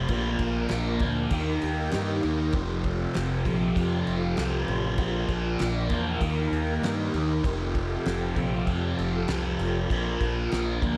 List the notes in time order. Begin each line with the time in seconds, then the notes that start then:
Already playing: F4
0.08 A#1 A#2 F3 A#3 D4 A#4, kick, crash
0.12 A#3
0.39 A#1, kick, crash
0.69 A#1, snare, crash
0.99 D2 F3 A#3, kick, crash
1.05 A#2
1.30 D#2 D#3 A#3 D#4 G4, kick, crash
1.34 D#4
1.61 D#2, crash
1.91 G2, snare, crash
2.23 D#2 D#3 A#3 D#4, crash
2.53 F1 F2 C3 F3 C4 F4 G4 A4, kick, crash
2.84 kick, crash
3.14 F1, snare, crash
3.45 A#1 F2 C3 F3, kick, crash
3.76 F2, kick, crash
4.07 F1, crash
4.37 C2 F2 C3 F3, snare, crash
4.68 A1, crash
4.97 A#1 A#2 F3 A#3 D4 A#4, kick, crash
5.29 A#1, kick, crash
5.59 A#1, snare, crash
5.89 E2 A#2 F3 A#3, kick, crash
6.21 D#2 D#3 A#3 D#4 G4, kick, crash
6.52 D#2, crash
6.82 G2, snare, crash
7.14 D#2 D#3 A#3 D#4, crash
7.44 F1 F2 C3 C4 F4 A4, kick, crash
7.48 F3
7.75 kick, crash
8.05 F1, snare, crash
8.36 A#1 F2 C3 F3, kick, crash
8.67 F2, kick, crash
8.98 F1, crash
9.28 C2 F2 C3, snare, crash
9.32 F3
9.59 F1, crash
9.90 A#1 A#2 F3 A#3 D4 A#4, kick, crash
10.21 A#1, kick, crash
10.51 A#1, snare, crash
10.82 D2 A#2 F3 A#3, kick, crash